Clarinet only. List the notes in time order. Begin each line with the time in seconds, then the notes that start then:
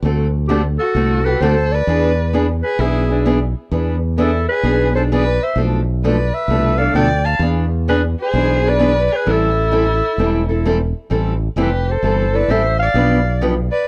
0.48 G4
0.79 A4
1.25 B4
1.41 C5
1.72 D5
2.62 B4
2.81 G#4
4.19 A4
4.49 B4
4.96 C5
5.13 D5
5.43 E5
6.04 D5
6.34 E5
6.78 F5
6.95 G5
7.25 A5
7.89 B4
8.22 C5
8.69 D5
9.16 B4
9.31 A4
11.62 B4
11.89 C5
12.35 D5
12.51 E5
12.79 F5
13.72 D5